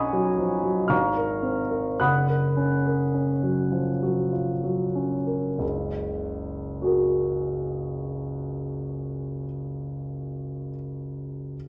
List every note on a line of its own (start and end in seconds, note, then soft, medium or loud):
0.00 0.86 B1 soft
0.00 0.93 C#4 soft
0.00 0.94 B4 soft
0.00 0.94 C#5 medium
0.00 0.85 D#5 soft
0.00 0.93 F#5 soft
0.00 0.86 G#5 soft
0.00 0.90 A#5 soft
0.00 0.86 B5 soft
0.00 0.90 C#6 medium
0.00 0.89 D#6 medium
0.13 0.54 F#3 soft
0.38 0.64 F3 soft
0.64 0.90 F#3 soft
0.88 1.96 G#1 soft
0.88 1.95 F5 soft
0.88 1.95 A#5 soft
0.88 1.95 C#6 soft
0.88 1.98 F6 medium
1.17 1.61 A#4 soft
1.43 1.88 C4 soft
1.70 1.99 A#4 soft
2.00 5.57 F#1 soft
2.00 4.30 F#5 soft
2.00 4.30 B5 soft
2.00 4.30 D#6 soft
2.00 4.33 F#6 medium
2.29 2.74 A#4 soft
2.57 3.02 C#4 soft
2.87 3.32 A#4 soft
3.14 3.61 C#4 soft
3.43 3.91 F#3 soft
3.72 4.02 F3 soft
4.03 4.52 F#3 soft
4.33 4.84 F4 soft
4.64 5.16 F#3 soft
4.95 5.48 C#4 soft
5.26 5.60 A#4 soft
5.58 9.45 F#1 soft
5.58 9.46 C#2 soft
6.82 10.69 F#4 soft
6.82 10.71 G#4 soft
6.86 10.73 A#4 soft